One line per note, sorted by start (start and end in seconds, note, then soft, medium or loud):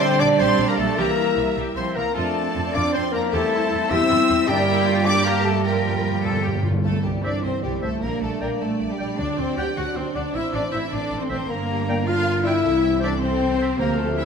0.00 0.39 D3 loud
0.00 0.97 G3 loud
0.00 0.20 C4 loud
0.00 0.96 D4 loud
0.00 0.22 C5 loud
0.00 0.21 C5 loud
0.00 0.96 D5 loud
0.00 0.19 C6 loud
0.00 0.20 C6 loud
0.00 0.09 C6 loud
0.19 0.28 A#1 medium
0.19 0.29 A#3 medium
0.19 0.39 D4 loud
0.19 0.41 D5 loud
0.19 0.39 D5 loud
0.19 0.25 D6 loud
0.19 0.28 D6 loud
0.38 0.47 A#1 loud
0.38 0.98 G3 loud
0.38 0.69 C4 loud
0.38 0.58 G4 loud
0.38 0.68 C5 loud
0.38 0.69 C5 loud
0.38 0.69 C6 loud
0.38 0.47 C6 loud
0.38 0.68 C6 loud
0.58 0.66 A#1 medium
0.58 0.67 D4 medium
0.68 0.78 A#3 loud
0.68 0.77 A#4 loud
0.68 0.78 A#4 medium
0.68 0.78 A#5 loud
0.68 0.78 A#5 medium
0.68 0.79 A#5 medium
0.77 0.86 A#1 medium
0.77 0.97 A3 loud
0.77 0.86 A#3 medium
0.77 1.00 A4 loud
0.77 0.99 A4 loud
0.77 1.00 A5 loud
0.77 0.98 A5 medium
0.77 0.99 A5 loud
0.97 1.05 C2 medium
0.97 1.53 E3 medium
0.97 1.94 G3 medium
0.97 1.55 A#3 loud
0.97 1.96 E4 medium
0.97 1.16 G4 loud
0.97 1.57 A#4 medium
0.97 1.94 E5 medium
0.97 1.56 A#5 loud
0.97 1.50 A#5 loud
0.97 1.56 A#5 medium
1.36 1.44 C2 medium
1.36 1.44 C4 medium
1.56 1.64 C2 medium
1.56 1.65 G3 medium
1.56 1.75 G4 medium
1.75 1.83 C2 medium
1.75 1.96 F3 medium
1.75 1.95 C4 loud
1.75 1.83 E4 medium
1.75 1.97 C5 medium
1.75 1.85 C5 medium
1.75 1.94 C6 medium
1.75 1.82 C6 medium
1.75 1.84 C6 medium
1.95 2.04 C2 medium
1.95 2.16 E3 medium
1.95 2.16 A#3 loud
1.95 2.03 C4 medium
1.95 2.14 A#4 medium
1.95 2.15 A#4 medium
1.95 2.15 A#5 medium
1.95 2.20 A#5 medium
2.14 2.24 F2 medium
2.14 2.70 F3 medium
2.14 2.73 A3 loud
2.14 3.29 C4 medium
2.14 2.70 D4 medium
2.14 2.33 F4 loud
2.14 2.76 A4 medium
2.14 2.74 A4 medium
2.14 3.28 D5 medium
2.14 2.74 A5 medium
2.14 2.73 A5 medium
2.19 2.76 A5 medium
2.55 2.63 F2 medium
2.55 2.62 C4 medium
2.73 2.83 F2 medium
2.73 3.32 F3 medium
2.73 2.94 D4 loud
2.73 3.32 D4 medium
2.73 2.92 F4 medium
2.73 2.92 D5 medium
2.73 2.93 D5 medium
2.73 2.94 D6 medium
2.73 2.97 D6 loud
2.73 2.94 D6 loud
2.92 3.02 F2 medium
2.92 3.13 C4 loud
2.92 3.02 D4 medium
2.92 3.02 C5 medium
2.92 3.03 C5 medium
2.92 3.13 C6 medium
2.92 3.18 C6 medium
2.92 3.14 C6 medium
3.12 3.22 F2 medium
3.12 3.32 A#3 loud
3.12 3.22 C4 medium
3.12 3.21 A#4 medium
3.12 3.33 A#4 medium
3.12 3.22 A#5 medium
3.12 3.33 A#5 medium
3.16 3.34 A#5 medium
3.32 3.41 E2 medium
3.32 3.89 G3 medium
3.32 3.90 A3 loud
3.32 3.89 C4 medium
3.32 3.90 E4 medium
3.32 3.51 G4 loud
3.32 3.89 A4 medium
3.32 3.94 A4 loud
3.32 4.48 C5 medium
3.32 3.89 A5 medium
3.32 3.91 A5 loud
3.32 3.92 A5 loud
3.71 3.79 E2 medium
3.71 3.79 C4 medium
3.90 3.99 E2 loud
3.90 4.47 G3 medium
3.90 4.47 C4 medium
3.90 4.48 E4 loud
3.90 4.08 G4 medium
3.90 4.49 E5 loud
3.90 4.51 E5 loud
3.90 4.48 E6 loud
3.90 4.47 E6 loud
4.09 4.18 E2 medium
4.09 4.17 E4 medium
4.28 4.37 E2 medium
4.28 4.36 C4 medium
4.48 5.02 G2 loud
4.48 6.62 G2 loud
4.48 5.05 G3 medium
4.48 5.05 G3 loud
4.48 5.06 A#3 loud
4.48 4.68 D4 loud
4.48 5.04 G4 loud
4.48 5.02 G4 loud
4.48 5.09 G4 loud
4.48 5.02 A#4 loud
4.48 5.06 G5 loud
4.48 5.07 G5 loud
4.48 5.06 G5 loud
4.68 4.86 E4 loud
4.87 5.07 F4 loud
5.04 5.64 G3 medium
5.04 5.62 A#3 medium
5.04 5.25 D4 loud
5.04 5.64 G4 loud
5.04 5.66 G4 loud
5.04 5.64 A#4 loud
5.04 5.24 D5 loud
5.04 5.29 D5 loud
5.04 5.26 D6 loud
5.04 5.25 D6 loud
5.25 5.45 A#3 loud
5.25 5.47 A#4 loud
5.25 5.46 A#4 loud
5.25 5.45 A#5 loud
5.25 5.46 A#5 loud
5.43 5.64 A3 loud
5.43 5.66 A4 medium
5.43 5.65 A4 medium
5.43 5.67 A5 medium
5.43 5.65 A5 medium
5.63 5.71 G2 soft
5.63 6.62 F3 medium
5.63 6.63 G3 medium
5.63 6.62 A#3 medium
5.63 6.66 F4 medium
5.63 6.65 G4 medium
5.63 6.64 G4 medium
5.63 6.20 A#4 medium
5.63 6.64 A#4 medium
5.63 6.63 G5 medium
5.63 6.62 G5 medium
5.63 6.63 G5 medium
5.72 5.80 G2 soft
5.81 5.87 G2 soft
5.88 5.95 G2 soft
5.96 6.03 G2 medium
6.04 6.09 G2 medium
6.10 6.17 G2 medium
6.18 6.24 G2 medium
6.24 6.31 G2 medium
6.24 6.43 A4 medium
6.32 6.39 G2 medium
6.40 6.46 G2 medium
6.44 6.53 G2 medium
6.44 6.65 G4 medium
6.54 6.61 G2 medium
6.63 6.70 G2 loud
6.63 6.72 F4 medium
6.71 6.79 G2 loud
6.84 6.93 C2 medium
6.84 7.98 E3 medium
6.84 6.92 A3 medium
6.84 6.93 A3 medium
6.84 7.04 A3 medium
6.84 7.98 C4 medium
6.84 7.03 A4 medium
6.84 7.03 A5 medium
7.04 7.13 C2 medium
7.04 7.24 G3 medium
7.04 7.25 G4 medium
7.04 7.24 G5 medium
7.22 7.33 C2 medium
7.22 7.44 D4 medium
7.22 7.31 C5 medium
7.22 7.43 D5 medium
7.22 7.31 E5 medium
7.22 7.45 D6 medium
7.43 7.52 C2 medium
7.43 7.63 C4 medium
7.43 7.64 C4 medium
7.43 7.98 C5 medium
7.43 7.63 C5 medium
7.43 7.63 C6 medium
7.63 7.72 C2 medium
7.63 7.82 G3 medium
7.63 7.83 G3 medium
7.63 7.82 G4 medium
7.63 7.83 G5 medium
7.82 7.92 C2 medium
7.82 8.02 A3 medium
7.82 8.03 A3 medium
7.82 8.02 A4 medium
7.82 7.89 C5 medium
7.82 7.89 E5 medium
7.82 7.90 A5 medium
8.01 8.11 A#1 medium
8.01 9.18 G3 medium
8.01 8.21 A#3 medium
8.01 8.22 A#3 medium
8.01 10.34 D4 medium
8.01 8.21 A#4 medium
8.01 10.34 D5 medium
8.01 8.22 A#5 medium
8.22 8.30 A#1 medium
8.22 8.41 A3 medium
8.22 8.42 A3 medium
8.22 8.41 A3 medium
8.22 8.41 A4 medium
8.22 8.44 A5 medium
8.41 8.49 A#1 medium
8.41 8.60 A#3 medium
8.41 8.61 A#3 medium
8.41 8.62 A#3 medium
8.41 8.49 A#4 medium
8.41 8.48 D5 medium
8.41 8.48 G5 medium
8.41 8.65 A#5 medium
8.61 8.69 A#1 medium
8.61 8.90 A3 medium
8.61 8.89 A3 medium
8.61 8.90 A3 medium
8.61 8.69 A4 medium
8.61 8.92 A5 medium
8.81 8.89 A#1 medium
8.89 8.97 G3 medium
8.89 8.98 G3 medium
8.89 8.99 G3 medium
8.89 8.98 G4 medium
8.89 9.00 G5 medium
8.98 9.08 A#1 medium
8.98 9.06 G3 medium
8.98 9.18 G3 medium
8.98 9.18 G4 medium
8.98 9.07 D5 medium
8.98 9.05 G5 medium
8.98 9.07 G5 medium
9.18 9.27 D2 medium
9.18 9.72 D3 medium
9.18 10.32 F#3 medium
9.18 9.37 D4 medium
9.18 9.38 D4 medium
9.18 9.27 D5 medium
9.18 9.41 D6 medium
9.37 9.46 D2 medium
9.37 9.56 C4 medium
9.37 9.57 C4 medium
9.37 9.57 C5 medium
9.37 9.57 C6 medium
9.57 9.65 D2 medium
9.57 9.76 G4 medium
9.57 9.65 G4 medium
9.57 9.77 G4 medium
9.57 9.64 D5 medium
9.57 9.64 F#5 medium
9.57 9.76 G5 medium
9.57 9.76 G6 medium
9.76 9.84 D2 medium
9.76 9.95 F#4 medium
9.76 9.84 F#4 medium
9.76 9.97 F#4 medium
9.76 9.96 F#5 medium
9.76 9.98 F#6 medium
9.95 10.03 D2 medium
9.95 10.14 C4 medium
9.95 10.04 C4 medium
9.95 10.06 C4 medium
9.95 10.15 C5 medium
9.95 10.18 C6 medium
10.14 10.23 D2 medium
10.14 10.34 D4 medium
10.14 10.23 D4 medium
10.14 10.35 D4 medium
10.14 10.22 D5 medium
10.14 10.34 D5 medium
10.14 10.22 F#5 medium
10.14 10.37 D6 medium
10.33 10.42 A1 medium
10.33 11.47 E3 medium
10.33 11.49 C4 medium
10.33 10.42 E4 medium
10.33 10.54 E4 loud
10.33 10.54 E4 medium
10.33 10.90 C5 medium
10.33 10.53 E5 medium
10.33 10.56 E6 medium
10.52 10.62 A1 medium
10.52 10.61 D4 medium
10.52 10.63 D4 loud
10.52 10.71 D5 medium
10.52 10.71 D6 medium
10.71 10.81 A1 medium
10.71 10.91 E4 medium
10.71 10.82 E4 medium
10.71 10.79 C5 medium
10.71 10.91 E5 medium
10.71 10.79 E5 medium
10.71 10.77 E6 medium
10.90 11.00 A1 medium
10.90 11.20 D4 medium
10.90 11.20 D4 loud
10.90 11.20 D4 medium
10.90 11.47 A4 medium
10.90 11.20 D5 medium
10.90 11.24 D6 medium
11.11 11.19 A1 medium
11.19 11.29 C4 medium
11.19 11.23 C5 medium
11.19 11.31 C6 medium
11.29 11.38 A1 medium
11.29 11.38 C4 medium
11.29 11.49 C4 loud
11.29 11.49 C4 medium
11.29 11.49 C5 medium
11.29 11.37 C5 medium
11.29 11.36 E5 medium
11.29 11.52 C6 medium
11.47 12.60 G1 medium
11.47 12.60 D3 medium
11.47 12.06 A#3 medium
11.47 12.05 A#3 loud
11.47 12.06 A#3 medium
11.47 12.60 D4 medium
11.47 12.05 A#4 medium
11.47 11.68 A#4 medium
11.47 12.09 A#5 medium
11.69 11.87 G4 medium
11.89 12.63 A#4 medium
11.89 11.95 D5 medium
11.89 11.95 G5 medium
12.06 12.44 F4 loud
12.06 12.45 F4 loud
12.06 12.44 F5 loud
12.06 12.46 F6 loud
12.44 13.01 E4 loud
12.44 13.01 E4 medium
12.44 13.03 E4 medium
12.44 12.51 D5 medium
12.44 13.01 E5 medium
12.44 12.52 G5 medium
12.44 13.01 E6 medium
12.63 13.79 C2 medium
12.63 13.60 E3 medium
12.63 13.60 C4 medium
12.63 12.71 A4 medium
12.83 13.01 G4 medium
13.00 13.11 D4 loud
13.00 13.21 D4 medium
13.00 13.77 A4 medium
13.00 13.07 C5 medium
13.00 13.20 D5 medium
13.00 13.10 E5 medium
13.00 13.20 D6 medium
13.19 13.78 C4 medium
13.19 13.78 C4 loud
13.19 13.77 C5 medium
13.19 13.58 C6 medium
13.58 13.65 C5 medium
13.58 13.68 E5 medium
13.77 14.25 D2 medium
13.77 14.25 D3 medium
13.77 14.25 F3 medium
13.77 13.98 A#3 loud
13.77 13.98 A#3 medium
13.77 13.89 A#3 medium
13.77 14.25 C4 medium
13.77 14.25 G4 medium
13.77 13.98 A#4 medium
13.77 14.25 C5 medium
13.77 14.00 A#5 loud
13.82 14.25 F5 medium
13.98 14.06 A3 medium
13.98 14.18 A3 medium
13.98 14.17 A4 medium
13.98 14.17 A5 medium
14.02 14.19 A3 medium
14.17 14.25 E4 medium
14.17 14.25 E5 medium
14.17 14.25 E6 medium
14.21 14.25 E4 medium